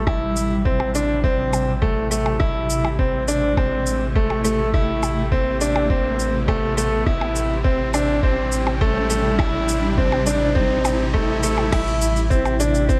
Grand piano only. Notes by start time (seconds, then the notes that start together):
0.07 E4
0.65 C4
0.95 D4
1.24 C4
1.82 A3
2.11 A3
2.40 E4
2.99 C4
3.28 D4
3.57 C4
4.16 A3
4.44 A3
4.74 E4
5.32 C4
5.61 D4
5.90 C4
6.48 A3
6.77 A3
7.06 E4
7.64 C4
7.94 D4
8.23 C4
8.81 A3
9.10 A3
9.39 E4
9.98 C4
10.26 D4
10.55 C4
11.14 A3
11.43 A3
11.72 E4
12.30 C4
12.60 D4
12.89 C4